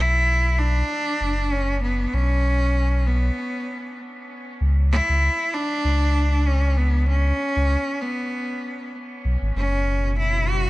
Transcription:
0, 0, Header, 1, 4, 480
1, 0, Start_track
1, 0, Key_signature, 2, "minor"
1, 0, Tempo, 618557
1, 1657, Time_signature, 4, 2, 24, 8
1, 8302, End_track
2, 0, Start_track
2, 0, Title_t, "Cello"
2, 0, Program_c, 0, 42
2, 0, Note_on_c, 0, 64, 120
2, 457, Note_on_c, 0, 62, 116
2, 469, Note_off_c, 0, 64, 0
2, 1177, Note_on_c, 0, 61, 99
2, 1189, Note_off_c, 0, 62, 0
2, 1413, Note_off_c, 0, 61, 0
2, 1417, Note_on_c, 0, 59, 85
2, 1657, Note_on_c, 0, 61, 106
2, 1669, Note_off_c, 0, 59, 0
2, 2378, Note_on_c, 0, 59, 88
2, 2389, Note_off_c, 0, 61, 0
2, 3097, Note_off_c, 0, 59, 0
2, 3816, Note_on_c, 0, 64, 120
2, 4296, Note_on_c, 0, 62, 115
2, 4308, Note_off_c, 0, 64, 0
2, 5015, Note_on_c, 0, 61, 99
2, 5027, Note_off_c, 0, 62, 0
2, 5256, Note_on_c, 0, 59, 86
2, 5267, Note_off_c, 0, 61, 0
2, 5491, Note_off_c, 0, 59, 0
2, 5495, Note_on_c, 0, 61, 112
2, 6217, Note_on_c, 0, 59, 90
2, 6228, Note_off_c, 0, 61, 0
2, 6937, Note_off_c, 0, 59, 0
2, 7420, Note_on_c, 0, 61, 101
2, 7867, Note_off_c, 0, 61, 0
2, 7899, Note_on_c, 0, 64, 101
2, 8138, Note_on_c, 0, 66, 102
2, 8150, Note_off_c, 0, 64, 0
2, 8302, Note_off_c, 0, 66, 0
2, 8302, End_track
3, 0, Start_track
3, 0, Title_t, "String machine"
3, 0, Program_c, 1, 50
3, 7416, Note_on_c, 1, 47, 84
3, 7716, Note_on_c, 1, 54, 91
3, 7896, Note_on_c, 1, 64, 81
3, 8302, Note_off_c, 1, 47, 0
3, 8302, Note_off_c, 1, 54, 0
3, 8302, Note_off_c, 1, 64, 0
3, 8302, End_track
4, 0, Start_track
4, 0, Title_t, "Sub bass"
4, 0, Program_c, 2, 38
4, 0, Note_on_c, 2, 35, 96
4, 644, Note_off_c, 2, 35, 0
4, 936, Note_on_c, 2, 30, 79
4, 1604, Note_off_c, 2, 30, 0
4, 1657, Note_on_c, 2, 35, 93
4, 2564, Note_off_c, 2, 35, 0
4, 3576, Note_on_c, 2, 37, 97
4, 3884, Note_off_c, 2, 37, 0
4, 3951, Note_on_c, 2, 37, 85
4, 4108, Note_off_c, 2, 37, 0
4, 4536, Note_on_c, 2, 37, 82
4, 5684, Note_off_c, 2, 37, 0
4, 5870, Note_on_c, 2, 37, 79
4, 6027, Note_off_c, 2, 37, 0
4, 7177, Note_on_c, 2, 35, 87
4, 7269, Note_off_c, 2, 35, 0
4, 7311, Note_on_c, 2, 32, 90
4, 7384, Note_off_c, 2, 32, 0
4, 7417, Note_on_c, 2, 30, 98
4, 8302, Note_off_c, 2, 30, 0
4, 8302, End_track
0, 0, End_of_file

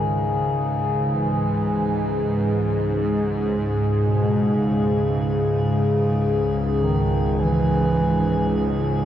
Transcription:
0, 0, Header, 1, 4, 480
1, 0, Start_track
1, 0, Key_signature, 4, "minor"
1, 0, Tempo, 500000
1, 8688, End_track
2, 0, Start_track
2, 0, Title_t, "Synth drone"
2, 0, Program_c, 0, 95
2, 0, Note_on_c, 0, 68, 68
2, 4359, Note_off_c, 0, 68, 0
2, 4370, Note_on_c, 0, 68, 71
2, 8688, Note_off_c, 0, 68, 0
2, 8688, End_track
3, 0, Start_track
3, 0, Title_t, "Bass clarinet"
3, 0, Program_c, 1, 71
3, 32, Note_on_c, 1, 49, 85
3, 1106, Note_on_c, 1, 52, 81
3, 1120, Note_off_c, 1, 49, 0
3, 2735, Note_off_c, 1, 52, 0
3, 3852, Note_on_c, 1, 47, 67
3, 4388, Note_on_c, 1, 49, 89
3, 4402, Note_off_c, 1, 47, 0
3, 6556, Note_on_c, 1, 51, 81
3, 6570, Note_off_c, 1, 49, 0
3, 7108, Note_on_c, 1, 52, 88
3, 7122, Note_off_c, 1, 51, 0
3, 8478, Note_off_c, 1, 52, 0
3, 8688, End_track
4, 0, Start_track
4, 0, Title_t, "Synth drone"
4, 0, Program_c, 2, 95
4, 0, Note_on_c, 2, 37, 68
4, 0, Note_on_c, 2, 44, 72
4, 8688, Note_off_c, 2, 37, 0
4, 8688, Note_off_c, 2, 44, 0
4, 8688, End_track
0, 0, End_of_file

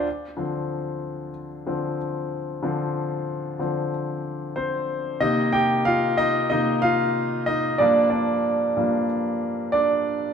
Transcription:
0, 0, Header, 1, 2, 480
1, 0, Start_track
1, 0, Tempo, 645369
1, 42, Time_signature, 4, 2, 24, 8
1, 7685, End_track
2, 0, Start_track
2, 0, Title_t, "Grand piano"
2, 0, Program_c, 0, 0
2, 0, Control_c, 0, 64, 127
2, 51, Control_c, 0, 64, 0
2, 171, Control_c, 0, 64, 127
2, 273, Note_on_c, 0, 50, 47
2, 278, Note_on_c, 0, 53, 44
2, 282, Note_on_c, 0, 60, 50
2, 968, Note_off_c, 0, 50, 0
2, 970, Note_off_c, 0, 53, 0
2, 972, Note_off_c, 0, 60, 0
2, 1238, Note_on_c, 0, 50, 48
2, 1240, Note_on_c, 0, 53, 46
2, 1243, Note_on_c, 0, 60, 55
2, 1456, Note_off_c, 0, 50, 0
2, 1457, Note_off_c, 0, 53, 0
2, 1458, Note_off_c, 0, 60, 0
2, 1952, Note_on_c, 0, 50, 56
2, 1958, Note_on_c, 0, 53, 53
2, 1961, Note_on_c, 0, 60, 62
2, 2661, Note_off_c, 0, 50, 0
2, 2663, Note_off_c, 0, 53, 0
2, 2668, Note_off_c, 0, 60, 0
2, 2672, Note_on_c, 0, 50, 46
2, 2675, Note_on_c, 0, 53, 41
2, 2679, Note_on_c, 0, 60, 53
2, 2892, Note_off_c, 0, 50, 0
2, 2894, Note_off_c, 0, 53, 0
2, 2896, Note_off_c, 0, 60, 0
2, 3391, Note_on_c, 0, 72, 81
2, 3399, Note_on_c, 0, 60, 66
2, 3851, Note_off_c, 0, 60, 0
2, 3870, Note_on_c, 0, 48, 58
2, 3871, Note_on_c, 0, 75, 97
2, 3875, Note_on_c, 0, 51, 57
2, 3878, Note_on_c, 0, 58, 64
2, 3881, Note_on_c, 0, 63, 81
2, 3890, Note_off_c, 0, 72, 0
2, 3892, Control_c, 0, 64, 0
2, 4003, Control_c, 0, 64, 127
2, 4105, Note_off_c, 0, 63, 0
2, 4109, Note_on_c, 0, 79, 98
2, 4119, Note_on_c, 0, 67, 72
2, 4124, Note_off_c, 0, 75, 0
2, 4164, Note_off_c, 0, 79, 0
2, 4173, Note_off_c, 0, 67, 0
2, 4353, Note_on_c, 0, 77, 106
2, 4366, Note_on_c, 0, 65, 83
2, 4566, Note_off_c, 0, 48, 0
2, 4568, Note_off_c, 0, 51, 0
2, 4570, Note_off_c, 0, 58, 0
2, 4587, Note_off_c, 0, 65, 0
2, 4593, Note_on_c, 0, 75, 98
2, 4604, Note_off_c, 0, 77, 0
2, 4607, Note_on_c, 0, 63, 72
2, 4822, Note_off_c, 0, 75, 0
2, 4828, Note_off_c, 0, 63, 0
2, 4833, Note_on_c, 0, 75, 98
2, 4838, Note_on_c, 0, 48, 51
2, 4842, Note_on_c, 0, 51, 45
2, 4844, Note_on_c, 0, 58, 56
2, 4846, Note_on_c, 0, 63, 80
2, 5055, Note_off_c, 0, 48, 0
2, 5058, Note_off_c, 0, 51, 0
2, 5059, Note_off_c, 0, 58, 0
2, 5060, Note_off_c, 0, 75, 0
2, 5067, Note_off_c, 0, 63, 0
2, 5071, Note_on_c, 0, 77, 112
2, 5085, Note_on_c, 0, 65, 85
2, 5533, Note_off_c, 0, 65, 0
2, 5550, Note_on_c, 0, 75, 94
2, 5563, Note_on_c, 0, 63, 69
2, 5570, Note_off_c, 0, 77, 0
2, 5778, Note_off_c, 0, 75, 0
2, 5785, Note_off_c, 0, 63, 0
2, 5789, Note_on_c, 0, 74, 95
2, 5795, Note_on_c, 0, 43, 60
2, 5800, Note_on_c, 0, 53, 54
2, 5805, Note_on_c, 0, 58, 69
2, 5806, Note_on_c, 0, 62, 76
2, 5810, Control_c, 0, 64, 0
2, 5922, Control_c, 0, 64, 127
2, 6013, Note_off_c, 0, 74, 0
2, 6024, Note_on_c, 0, 74, 77
2, 6027, Note_off_c, 0, 62, 0
2, 6043, Note_on_c, 0, 62, 62
2, 6117, Note_off_c, 0, 43, 0
2, 6120, Note_off_c, 0, 53, 0
2, 6122, Note_off_c, 0, 58, 0
2, 6519, Note_on_c, 0, 43, 52
2, 6523, Note_on_c, 0, 53, 47
2, 6523, Note_on_c, 0, 58, 53
2, 6722, Note_off_c, 0, 74, 0
2, 6732, Note_off_c, 0, 62, 0
2, 6736, Note_off_c, 0, 43, 0
2, 6738, Note_off_c, 0, 53, 0
2, 6738, Note_off_c, 0, 58, 0
2, 7231, Note_on_c, 0, 74, 95
2, 7244, Note_on_c, 0, 62, 69
2, 7685, Note_off_c, 0, 62, 0
2, 7685, Note_off_c, 0, 74, 0
2, 7685, End_track
0, 0, End_of_file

